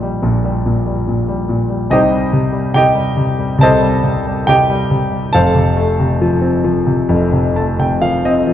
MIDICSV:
0, 0, Header, 1, 2, 480
1, 0, Start_track
1, 0, Tempo, 840336
1, 1097, Time_signature, 4, 2, 24, 8
1, 1575, Tempo, 862069
1, 3015, Tempo, 887574
1, 3975, Tempo, 933126
1, 4703, End_track
2, 0, Start_track
2, 0, Title_t, "Grand piano"
2, 0, Program_c, 0, 0
2, 0, Control_c, 0, 64, 127
2, 0, Note_on_c, 0, 34, 61
2, 0, Note_on_c, 0, 46, 48
2, 0, Note_on_c, 0, 55, 50
2, 0, Note_on_c, 0, 63, 58
2, 0, Note_on_c, 0, 67, 58
2, 0, Note_on_c, 0, 70, 50
2, 0, Note_on_c, 0, 75, 69
2, 15, Note_off_c, 0, 55, 0
2, 15, Note_on_c, 0, 55, 52
2, 119, Note_off_c, 0, 34, 0
2, 120, Note_off_c, 0, 46, 0
2, 127, Note_on_c, 0, 34, 58
2, 129, Note_on_c, 0, 46, 64
2, 245, Note_off_c, 0, 55, 0
2, 254, Note_on_c, 0, 55, 53
2, 367, Note_off_c, 0, 46, 0
2, 376, Note_on_c, 0, 46, 56
2, 486, Note_off_c, 0, 55, 0
2, 494, Note_on_c, 0, 55, 50
2, 592, Note_off_c, 0, 75, 0
2, 594, Note_off_c, 0, 67, 0
2, 594, Note_off_c, 0, 70, 0
2, 596, Note_off_c, 0, 63, 0
2, 607, Note_off_c, 0, 46, 0
2, 615, Note_on_c, 0, 46, 53
2, 725, Note_off_c, 0, 55, 0
2, 733, Note_on_c, 0, 55, 51
2, 842, Note_off_c, 0, 46, 0
2, 851, Note_on_c, 0, 46, 53
2, 961, Note_off_c, 0, 55, 0
2, 970, Note_on_c, 0, 55, 45
2, 1070, Note_off_c, 0, 34, 0
2, 1086, Note_off_c, 0, 46, 0
2, 1086, Note_on_c, 0, 36, 61
2, 1087, Note_on_c, 0, 48, 72
2, 1090, Note_off_c, 0, 55, 0
2, 1091, Note_on_c, 0, 75, 97
2, 1099, Note_on_c, 0, 63, 64
2, 1099, Note_on_c, 0, 72, 67
2, 1100, Note_on_c, 0, 67, 66
2, 1105, Control_c, 0, 64, 0
2, 1191, Control_c, 0, 64, 127
2, 1206, Note_on_c, 0, 55, 50
2, 1322, Note_off_c, 0, 48, 0
2, 1330, Note_on_c, 0, 48, 63
2, 1435, Note_off_c, 0, 55, 0
2, 1443, Note_on_c, 0, 55, 55
2, 1553, Note_off_c, 0, 63, 0
2, 1553, Note_off_c, 0, 67, 0
2, 1553, Note_off_c, 0, 72, 0
2, 1558, Note_off_c, 0, 48, 0
2, 1566, Note_on_c, 0, 48, 59
2, 1567, Note_on_c, 0, 79, 99
2, 1575, Note_off_c, 0, 75, 0
2, 1576, Note_on_c, 0, 67, 73
2, 1583, Note_on_c, 0, 75, 76
2, 1674, Note_off_c, 0, 55, 0
2, 1682, Note_on_c, 0, 55, 61
2, 1795, Note_off_c, 0, 48, 0
2, 1803, Note_on_c, 0, 48, 57
2, 1918, Note_off_c, 0, 55, 0
2, 1927, Note_on_c, 0, 55, 58
2, 2023, Note_off_c, 0, 79, 0
2, 2026, Note_off_c, 0, 36, 0
2, 2027, Note_off_c, 0, 67, 0
2, 2028, Note_off_c, 0, 48, 0
2, 2031, Note_off_c, 0, 75, 0
2, 2034, Note_on_c, 0, 36, 67
2, 2036, Note_on_c, 0, 48, 69
2, 2051, Note_on_c, 0, 81, 111
2, 2059, Note_on_c, 0, 72, 79
2, 2060, Note_on_c, 0, 75, 81
2, 2063, Note_on_c, 0, 69, 77
2, 2151, Note_off_c, 0, 55, 0
2, 2159, Note_on_c, 0, 55, 57
2, 2278, Note_off_c, 0, 48, 0
2, 2287, Note_on_c, 0, 48, 61
2, 2407, Note_off_c, 0, 55, 0
2, 2416, Note_on_c, 0, 55, 50
2, 2514, Note_off_c, 0, 72, 0
2, 2515, Note_off_c, 0, 75, 0
2, 2516, Note_off_c, 0, 69, 0
2, 2523, Note_off_c, 0, 48, 0
2, 2529, Note_on_c, 0, 79, 107
2, 2531, Note_on_c, 0, 48, 60
2, 2540, Note_on_c, 0, 67, 76
2, 2540, Note_on_c, 0, 75, 68
2, 2547, Note_off_c, 0, 81, 0
2, 2647, Note_off_c, 0, 55, 0
2, 2655, Note_on_c, 0, 55, 66
2, 2764, Note_off_c, 0, 48, 0
2, 2773, Note_on_c, 0, 48, 59
2, 2880, Note_off_c, 0, 55, 0
2, 2888, Note_on_c, 0, 55, 51
2, 2985, Note_off_c, 0, 36, 0
2, 2997, Note_off_c, 0, 67, 0
2, 2997, Note_off_c, 0, 75, 0
2, 3005, Note_on_c, 0, 81, 113
2, 3007, Note_off_c, 0, 48, 0
2, 3008, Note_off_c, 0, 55, 0
2, 3014, Note_on_c, 0, 41, 75
2, 3016, Note_on_c, 0, 29, 70
2, 3016, Note_on_c, 0, 69, 73
2, 3016, Note_on_c, 0, 72, 74
2, 3016, Note_on_c, 0, 77, 75
2, 3023, Control_c, 0, 64, 0
2, 3028, Note_off_c, 0, 79, 0
2, 3113, Control_c, 0, 64, 127
2, 3126, Note_on_c, 0, 48, 62
2, 3243, Note_on_c, 0, 57, 73
2, 3359, Note_off_c, 0, 48, 0
2, 3368, Note_on_c, 0, 48, 66
2, 3487, Note_on_c, 0, 53, 72
2, 3595, Note_on_c, 0, 60, 54
2, 3710, Note_off_c, 0, 53, 0
2, 3718, Note_on_c, 0, 53, 60
2, 3830, Note_off_c, 0, 48, 0
2, 3839, Note_on_c, 0, 48, 59
2, 3951, Note_off_c, 0, 41, 0
2, 3953, Note_off_c, 0, 29, 0
2, 3959, Note_on_c, 0, 41, 78
2, 3961, Note_on_c, 0, 29, 66
2, 4073, Note_off_c, 0, 48, 0
2, 4081, Note_on_c, 0, 48, 58
2, 4189, Note_off_c, 0, 57, 0
2, 4195, Note_off_c, 0, 81, 0
2, 4203, Note_on_c, 0, 81, 67
2, 4205, Note_on_c, 0, 57, 60
2, 4312, Note_off_c, 0, 48, 0
2, 4320, Note_off_c, 0, 81, 0
2, 4320, Note_on_c, 0, 48, 51
2, 4323, Note_on_c, 0, 79, 70
2, 4428, Note_off_c, 0, 77, 0
2, 4429, Note_off_c, 0, 53, 0
2, 4435, Note_off_c, 0, 69, 0
2, 4435, Note_off_c, 0, 72, 0
2, 4436, Note_on_c, 0, 77, 84
2, 4437, Note_on_c, 0, 53, 62
2, 4441, Note_off_c, 0, 79, 0
2, 4550, Note_off_c, 0, 60, 0
2, 4557, Note_off_c, 0, 77, 0
2, 4558, Note_on_c, 0, 60, 63
2, 4558, Note_on_c, 0, 75, 75
2, 4663, Note_off_c, 0, 53, 0
2, 4671, Note_on_c, 0, 53, 65
2, 4703, Note_off_c, 0, 29, 0
2, 4703, Note_off_c, 0, 41, 0
2, 4703, Note_off_c, 0, 48, 0
2, 4703, Note_off_c, 0, 53, 0
2, 4703, Note_off_c, 0, 57, 0
2, 4703, Note_off_c, 0, 60, 0
2, 4703, Note_off_c, 0, 75, 0
2, 4703, End_track
0, 0, End_of_file